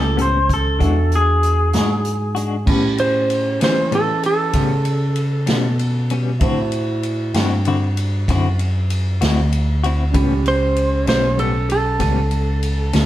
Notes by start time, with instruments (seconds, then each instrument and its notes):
Already playing: tine electric piano C#2, grand piano C#4 G4 B5, clean electric guitar A4
0.16 clean electric guitar A2 G3 B3 C#4, closed hi-hat
0.22 clean electric guitar C5
0.49 kick, closed hi-hat
0.54 clean electric guitar A4
0.79 tine electric piano E2, clean electric guitar E3 G#3 D4 F#4, grand piano D4 F#4 G#5, kick, closed hi-hat
1.12 clean electric guitar G#4, closed hi-hat
1.43 closed hi-hat
1.73 tine electric piano G#2, clean electric guitar G#3 D4 F#4, snare, closed hi-hat
2.05 closed hi-hat
2.35 clean electric guitar G#3 D4 F#4, closed hi-hat
2.65 clean electric guitar A2 G3 B3 C#4, tine electric piano A2, grand piano C#4 G4, kick, crash
2.70 grand piano B5
2.98 electric slide guitar C5, ride
3.30 ride
3.61 tine electric piano E3, clean electric guitar G3 B3 C#4, electric slide guitar C5, snare, ride
3.91 clean electric guitar A2 G3 B3 C#4, electric slide guitar A4, ride
4.23 electric slide guitar A4, ride
4.53 clean electric guitar A2 G3 B3 C#4, tine electric piano C#3, kick, snare, ride
4.85 ride
5.16 ride
5.47 tine electric piano B2, clean electric guitar G3 B3 C#4, snare, ride
5.79 ride
6.10 clean electric guitar G3 B3 C#4, ride
6.39 tine electric piano A2, clean electric guitar D3 C4 E4 F#4, grand piano E4 F#4, kick, ride
6.43 grand piano C5
6.72 ride
7.03 ride
7.34 tine electric piano G2, clean electric guitar C4 E4 F#4, snare, ride
7.65 clean electric guitar D3 C4 E4 F#4, ride
7.97 ride
8.28 tine electric piano F#2, clean electric guitar D3 C4 E4 F#4, kick, snare, ride
8.59 ride
8.90 ride
9.21 tine electric piano D2, clean electric guitar C4 E4 F#4, snare, ride
9.52 ride
9.84 clean electric guitar C4 E4 F#4, ride
10.11 tine electric piano C#2, clean electric guitar A2 G3 B3, grand piano C#4 G4 B5, kick, ride
10.15 clean electric guitar C#4
10.46 electric slide guitar C5, ride
10.76 ride
11.07 tine electric piano B1, clean electric guitar G3 B3 C#4, electric slide guitar C5, snare, ride
11.37 clean electric guitar A2 G3 B3 C#4, electric slide guitar A4, ride
11.70 electric slide guitar A4, ride
12.00 tine electric piano C#2, clean electric guitar A2 G3 B3 C#4, kick, snare, ride
12.31 ride
12.63 ride
12.93 tine electric piano D2, clean electric guitar G3 B3 C#4, snare, ride